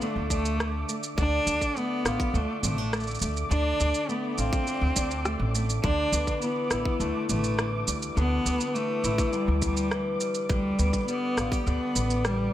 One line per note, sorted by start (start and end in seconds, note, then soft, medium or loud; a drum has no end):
0.00 1.17 D3 medium
0.00 0.59 A3 medium
0.00 0.31 A3 medium
0.00 0.29 D4 medium
0.00 2.04 F4 medium
0.00 12.53 D6 medium
0.00 shaker soft
0.16 0.82 D2 medium
0.30 0.85 A3 medium
0.30 1.46 D4 medium
0.30 kick medium
0.30 shaker medium
0.45 shaker soft
0.60 0.88 A3 medium
0.60 cross-stick medium
0.60 shaker soft
0.89 1.75 A3 medium
0.89 shaker medium
1.03 shaker soft
1.18 1.39 D2 medium
1.18 2.33 D3 medium
1.18 1.79 D4 loud
1.18 kick loud
1.18 shaker soft
1.47 1.57 D2 medium
1.47 2.63 D4 medium
1.47 shaker medium
1.61 kick medium
1.61 shaker soft
1.76 2.92 A3 medium
1.76 2.37 B3 loud
1.76 shaker soft
2.05 2.16 A1 medium
2.05 4.36 F4 medium
2.05 cross-stick medium
2.05 shaker medium
2.20 kick loud
2.20 shaker soft
2.34 2.45 D2 medium
2.34 3.49 D3 medium
2.34 2.63 A3 medium
2.34 shaker soft
2.63 3.15 A1 medium
2.63 3.18 A3 medium
2.63 2.78 C4 medium
2.63 mid tom medium
2.63 shaker medium
2.78 3.78 D4 soft
2.93 3.21 A3 medium
2.93 cross-stick medium
2.93 shaker soft
2.96 shaker soft
3.00 shaker soft
3.03 shaker soft
3.07 shaker soft
3.11 shaker soft
3.15 shaker soft
3.19 3.43 D2 medium
3.19 shaker soft
3.22 4.08 A3 medium
3.22 shaker medium
3.37 shaker soft
3.50 3.72 D2 medium
3.50 4.66 D3 medium
3.50 4.11 D4 loud
3.50 shaker soft
3.80 3.91 D2 medium
3.80 4.95 D4 medium
3.80 shaker medium
3.94 shaker soft
4.09 5.24 A3 medium
4.09 4.40 B3 medium
4.09 shaker soft
4.38 4.49 A1 medium
4.38 5.55 C4 medium
4.38 5.89 F4 medium
4.38 shaker medium
4.53 kick loud
4.53 shaker soft
4.67 5.82 D3 medium
4.67 shaker soft
4.81 4.96 D2 medium
4.96 5.34 D2 medium
4.96 5.90 D4 medium
4.96 kick medium
4.96 shaker medium
5.11 shaker soft
5.25 5.53 A3 medium
5.25 cross-stick medium
5.25 shaker soft
5.39 5.77 A1 medium
5.55 5.90 A3 medium
5.55 shaker medium
5.70 shaker soft
5.83 6.05 D2 medium
5.83 7.00 D3 medium
5.83 6.38 D4 loud
5.83 kick loud
5.83 shaker soft
6.12 6.23 D2 medium
6.12 7.29 B3 medium
6.12 shaker medium
6.27 kick medium
6.27 shaker soft
6.42 7.57 E3 medium
6.42 7.02 B3 medium
6.42 shaker soft
6.71 6.82 A1 medium
6.71 9.03 E4 medium
6.71 cross-stick medium
6.71 shaker medium
6.85 kick medium
7.00 7.11 D2 medium
7.00 8.16 D3 medium
7.00 7.28 A3 medium
7.00 shaker soft
7.29 7.81 A1 medium
7.29 7.83 A3 medium
7.29 8.45 B3 medium
7.29 mid tom medium
7.29 shaker medium
7.44 shaker soft
7.58 8.74 E3 medium
7.58 cross-stick medium
7.58 shaker soft
7.88 8.09 D2 medium
7.88 10.20 G3 medium
7.88 shaker medium
8.02 shaker soft
8.16 8.38 D2 medium
8.16 9.32 D3 medium
8.16 8.75 B3 loud
8.16 shaker soft
8.46 8.56 D2 medium
8.46 9.62 B3 medium
8.46 shaker medium
8.61 shaker soft
8.74 9.90 E3 medium
8.74 9.35 A3 medium
8.74 shaker soft
9.04 9.15 A1 medium
9.04 10.55 E4 medium
9.04 shaker medium
9.18 kick medium
9.18 shaker soft
9.33 10.49 D3 medium
9.33 9.62 G3 medium
9.33 shaker soft
9.48 10.14 D2 medium
9.62 10.17 G3 medium
9.62 10.78 B3 medium
9.62 kick medium
9.62 shaker medium
9.77 shaker soft
9.91 10.49 E3 medium
9.91 cross-stick medium
9.91 shaker soft
10.20 11.08 G3 medium
10.20 shaker medium
10.34 shaker soft
10.49 10.71 D2 medium
10.49 11.66 D3 medium
10.49 11.04 G3 medium
10.49 kick loud
10.49 shaker soft
10.79 10.90 D2 medium
10.79 11.94 B3 medium
10.79 shaker medium
10.93 kick medium
10.93 shaker soft
11.07 12.23 G3 medium
11.07 11.62 B3 medium
11.07 shaker soft
11.37 11.48 A1 medium
11.37 11.52 F4 medium
11.37 cross-stick medium
11.37 shaker medium
11.52 12.53 G4 medium
11.52 kick medium
11.52 shaker soft
11.66 11.77 D2 medium
11.66 12.53 D3 medium
11.66 12.26 B3 medium
11.66 shaker soft
11.96 12.47 A1 medium
11.96 12.53 B3 medium
11.96 shaker medium
12.10 shaker soft
12.25 12.52 G3 medium
12.25 12.53 G3 medium
12.25 cross-stick medium
12.25 shaker soft